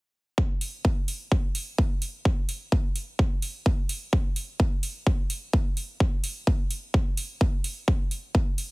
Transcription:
0.38 kick
0.61 open hi-hat
0.85 kick
1.08 open hi-hat
1.32 kick
1.55 open hi-hat
1.78 kick
2.02 open hi-hat
2.25 kick
2.49 open hi-hat
2.72 kick
2.96 open hi-hat
3.19 kick
3.42 open hi-hat
3.66 kick
3.89 open hi-hat
4.13 kick
4.36 open hi-hat
4.60 kick
4.83 open hi-hat
5.07 kick
5.30 open hi-hat
5.53 kick
5.77 open hi-hat
6.00 kick
6.24 open hi-hat
6.47 kick
6.71 open hi-hat
6.94 kick
7.17 open hi-hat
7.41 kick
7.64 open hi-hat
7.88 kick
8.11 open hi-hat
8.35 kick
8.58 open hi-hat

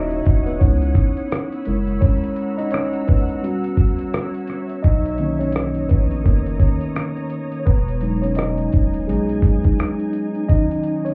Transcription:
Already playing: D#1 A#3 C#4 D#4 E4 F#4 C#5 D#5 E5 F#5 D#6
0.11 closed hi-hat
0.26 D#1, kick, closed hi-hat
0.46 B3 B4, closed hi-hat
0.60 C#2 B3 C#4 D#4 E4 C#5 E6, kick, closed hi-hat
0.82 closed hi-hat
0.95 kick, closed hi-hat
1.17 closed hi-hat
1.32 cross-stick, closed hi-hat
1.52 closed hi-hat
1.65 F#1 G#3 E4 A#4 F#5 A#5, closed hi-hat
1.87 closed hi-hat
2.01 C#4 C#5, kick, closed hi-hat
2.24 closed hi-hat
2.36 closed hi-hat
2.58 D#4 D#5, closed hi-hat
2.71 C#4 C#5, cross-stick, closed hi-hat
2.93 closed hi-hat
3.07 B3 B4, kick, closed hi-hat
3.29 closed hi-hat
3.43 G3 C#4 F#4 C#5 E5, closed hi-hat
3.64 closed hi-hat
3.77 kick, closed hi-hat
3.99 closed hi-hat
4.14 cross-stick, closed hi-hat
4.34 closed hi-hat
4.47 cross-stick, closed hi-hat
4.69 closed hi-hat
4.83 B1 D#4 C#5 D#5 A#5 D#6, kick, closed hi-hat
5.06 closed hi-hat
5.18 D#3 A#3 C#4, closed hi-hat
5.39 C#4 C#5, closed hi-hat
5.52 cross-stick, closed hi-hat
5.75 closed hi-hat
5.89 A#1 B3 B4, kick, closed hi-hat
6.11 closed hi-hat
6.24 F#1 A#3 A#4, kick, closed hi-hat
6.46 closed hi-hat
6.60 D#3 A#3 C#4, kick, closed hi-hat
6.81 closed hi-hat
6.96 cross-stick, closed hi-hat
7.17 closed hi-hat
7.30 closed hi-hat
7.52 closed hi-hat
7.60 C#5
7.66 E1 B3 D#4 B4 G#5, kick, closed hi-hat
7.88 closed hi-hat
8.01 F#3 G#3 D#4, closed hi-hat
8.22 C#4 C#5, closed hi-hat
8.35 D#4 D#5, cross-stick, closed hi-hat
8.58 closed hi-hat
8.72 D#1, kick, closed hi-hat
8.94 closed hi-hat
9.07 B1 F#3 G#3 D#4 G#4, closed hi-hat
9.29 closed hi-hat
9.42 kick, closed hi-hat
9.64 kick, closed hi-hat
9.79 cross-stick, closed hi-hat
10.00 closed hi-hat
10.13 closed hi-hat
10.35 closed hi-hat
10.49 D#3 F#3 C#4 D#4 C#5 D#5 A#5 D#6, kick, closed hi-hat
10.71 closed hi-hat
10.83 closed hi-hat
11.05 C#4 C#5, closed hi-hat

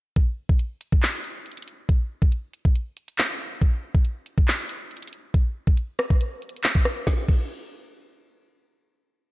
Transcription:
0.16 kick, closed hi-hat
0.49 kick
0.59 closed hi-hat
0.81 closed hi-hat
0.92 kick
1.03 clap, closed hi-hat
1.24 closed hi-hat
1.46 closed hi-hat
1.52 closed hi-hat
1.57 closed hi-hat
1.62 closed hi-hat
1.68 closed hi-hat
1.89 kick, closed hi-hat
2.22 kick
2.32 closed hi-hat
2.53 closed hi-hat
2.65 kick
2.76 closed hi-hat
2.97 closed hi-hat
3.08 closed hi-hat
3.18 clap
3.30 closed hi-hat
3.62 kick, closed hi-hat
3.95 kick
4.05 closed hi-hat
4.26 closed hi-hat
4.38 kick
4.48 clap, closed hi-hat
4.69 closed hi-hat
4.91 closed hi-hat
4.97 closed hi-hat
5.02 closed hi-hat
5.08 closed hi-hat
5.13 closed hi-hat
5.34 kick, closed hi-hat
5.67 kick
5.77 closed hi-hat
5.99 cross-stick, closed hi-hat
6.10 kick
6.21 closed hi-hat
6.42 closed hi-hat
6.49 closed hi-hat
6.56 closed hi-hat
6.64 clap
6.75 kick, closed hi-hat
6.85 cross-stick, open hi-hat
7.07 kick, snare
7.28 kick, crash

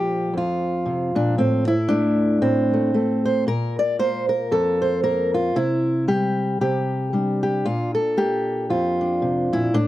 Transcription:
Already playing: A#2 F3 G4
0.34 F2 F4
0.85 C3
1.15 A#2 D4
1.38 A2 C4
1.68 E4
1.88 A3 D4
2.42 A2 C4
2.74 A3
2.94 A3 A4
3.25 C5
3.47 A#2 A#4
3.79 D5
3.99 A#3 C5
4.29 A#4
4.51 F2 A4
4.82 C5
5.03 A#3 A#4
5.34 F4
5.56 C3 E4
6.08 G3 G4
6.61 C3 G4
7.13 G3 D4
7.43 G4
7.66 A#2 F4
7.95 A4
8.17 A#3 G4
8.70 F2 F4
9.01 D4
9.22 C3
9.53 A#2 E4
9.74 A2 D4

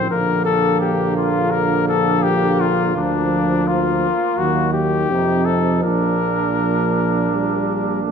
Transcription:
Already playing: D#3 F3 C4
0.10 A#1 D3 A#3 A#4
0.45 A4
0.80 G4
1.17 F4
1.51 A#4
1.88 A4
2.23 G4
2.61 F4
2.96 D2 F3 D4
3.67 F4
4.38 D#2 D#3 F#3 F#4
4.73 G4
5.10 F2 C3 F3 D#4
5.45 A4
5.83 A#1 A#2 D4 A#4
6.58 F3
7.32 G3
8.05 A3

